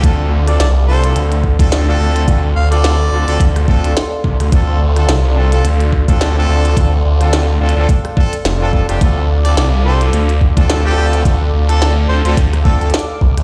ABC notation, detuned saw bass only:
X:1
M:4/4
L:1/16
Q:"Swing 16ths" 1/4=107
K:Dm
V:1 name="Detuned saw bass" clef=bass
D,,4 C,,4 D,,3 D,,3 D,,2 | D,,2 D,,4 D,, D,, D,,3 D,, z2 C,, D,, | D,,4 C,,4 D,,3 D,,3 D,,2 | D,,2 D,,4 D,, D,, z4 F,,,3 F,,, |
D,,4 C,,4 D,,3 D,,3 D,,2 | D,,2 D,,4 D,, D,, D,,3 D,, z2 C,, D,, |]